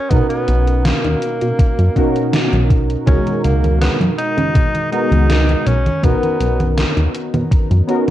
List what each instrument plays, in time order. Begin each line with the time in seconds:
Already playing: tenor saxophone C#4
0.09 analog synth bass B1, synth keys B2 C#4 D#4 F#4 A#4, tenor saxophone B3, kick, closed hi-hat
0.29 tenor saxophone B3, closed hi-hat
0.48 analog synth bass B1, closed hi-hat
0.67 closed hi-hat
0.84 tenor saxophone A#3, snare, closed hi-hat
1.04 analog synth bass D#2, closed hi-hat
1.22 closed hi-hat
1.41 analog synth bass B2, closed hi-hat
1.59 kick, closed hi-hat
1.79 analog synth bass F#2, closed hi-hat
1.95 synth keys B2 C#4 D#4 F#4 A#4, kick, closed hi-hat
2.16 closed hi-hat
2.33 snare, closed hi-hat
2.53 analog synth bass B1, closed hi-hat
2.70 kick, closed hi-hat
2.90 closed hi-hat
3.06 analog synth bass C#2, synth keys B2 G#3 D#4 F#4 A#4, tenor saxophone C#4, kick, closed hi-hat, high conga
3.27 closed hi-hat, high conga
3.44 analog synth bass C#2, tenor saxophone A#3, closed hi-hat
3.64 closed hi-hat, high conga
3.81 tenor saxophone B3, snare, closed hi-hat, high conga
4.00 analog synth bass F#2, closed hi-hat, high conga
4.18 tenor saxophone D#4, closed hi-hat
4.37 analog synth bass C#3, closed hi-hat, high conga
4.55 analog synth bass B2, kick, closed hi-hat, high conga
4.75 closed hi-hat, high conga
4.92 synth keys G#3 B3 D#4 F#4 A#4, tenor saxophone D#4, closed hi-hat
5.12 analog synth bass C#2, closed hi-hat, high conga
5.30 snare, closed hi-hat, high conga
5.49 closed hi-hat, high conga
5.66 analog synth bass B1, tenor saxophone C#4, closed hi-hat
5.86 closed hi-hat, high conga
6.02 analog synth bass B1, synth keys B3 C#4 D#4 F#4 A#4, tenor saxophone B3, kick, closed hi-hat, high conga
6.23 closed hi-hat, high conga
6.40 analog synth bass B1, closed hi-hat
6.60 closed hi-hat, high conga
6.78 snare, closed hi-hat, high conga
6.97 analog synth bass D#2, closed hi-hat, high conga
7.15 closed hi-hat
7.34 analog synth bass B2, closed hi-hat, high conga
7.52 kick, closed hi-hat, high conga
7.71 analog synth bass F#2, closed hi-hat, high conga
7.87 synth keys B3 C#4 D#4 F#4 A#4, closed hi-hat